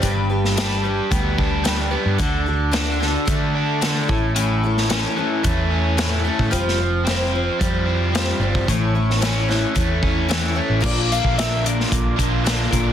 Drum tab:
CC |----------------|----------------|----------------|----------------|
HH |x---x---x---x---|x---x---x---x---|x---x---x---x---|x---x---x---x---|
SD |---oo-------o---|----o-o-----o---|---oo-------o---|-o--o-------o---|
BD |o-------o-o-----|o-------o-----o-|--------o------o|o-------o------o|

CC |----------------|x---------------|
HH |x---x---x---x---|--x-x-x-x-x-x-x-|
SD |---oo-o-----o---|----o--o----o---|
BD |o-------o-o-----|o--o----o-o---o-|